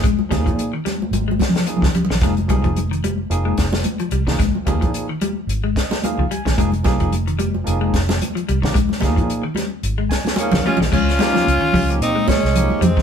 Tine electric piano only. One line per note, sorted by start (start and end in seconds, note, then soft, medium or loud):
0.29 0.70 F3 medium
0.29 0.70 A#3 medium
0.29 0.71 D#4 medium
0.29 0.71 G#4 medium
1.66 1.87 F3 medium
1.66 1.87 A#3 medium
1.66 1.88 D#4 medium
1.66 1.88 G#4 medium
2.21 2.32 F3 medium
2.21 2.33 A#3 medium
2.21 2.33 D#4 medium
2.21 2.33 G#4 medium
2.48 2.78 F3 medium
2.48 2.78 A#3 medium
2.48 2.79 D#4 medium
2.48 2.79 G#4 medium
3.30 3.65 F3 medium
3.30 3.65 A#3 medium
3.30 3.65 D#4 medium
3.30 3.66 G#4 medium
4.27 4.40 F3 medium
4.27 4.40 A#3 medium
4.27 4.40 D#4 medium
4.27 4.40 G#4 medium
4.66 5.06 F3 medium
4.66 5.06 A#3 medium
4.66 5.07 D#4 medium
4.66 5.07 G#4 medium
5.76 6.01 D#5 medium
6.04 6.24 F3 medium
6.04 6.24 A#3 medium
6.04 6.24 D#4 medium
6.04 6.24 G#4 medium
6.04 6.29 F5 medium
6.31 6.56 G#5 medium
6.57 6.68 F3 medium
6.57 6.68 A#3 medium
6.57 6.69 D#4 medium
6.57 6.70 G#4 medium
6.84 7.13 F3 medium
6.84 7.14 A#3 medium
6.84 7.14 D#4 medium
6.84 7.14 G#4 medium
7.64 8.00 F3 medium
7.64 8.00 A#3 medium
7.64 8.00 D#4 medium
7.64 8.01 G#4 medium
8.63 8.75 F3 medium
8.63 8.76 A#3 medium
8.63 8.76 D#4 medium
8.63 8.76 G4 medium
9.02 9.42 F3 medium
9.02 9.42 A#3 medium
9.02 9.43 D#4 medium
9.02 9.43 G#4 medium
10.09 10.36 G#5 medium
10.36 10.57 F3 medium
10.36 10.57 A#3 medium
10.36 10.58 D#4 medium
10.36 10.59 G#4 medium
10.36 10.63 F5 medium
10.65 10.91 D#5 medium
11.20 11.44 F3 medium
11.20 11.44 A#3 medium
11.20 11.44 D#4 medium
11.20 11.45 G4 medium
11.89 12.12 F3 medium
11.89 12.12 A#3 medium
11.89 12.13 D#4 medium
11.89 12.13 G4 medium
12.55 12.84 F3 medium
12.55 12.84 A#3 medium
12.55 12.84 D#4 medium
12.55 12.85 G4 medium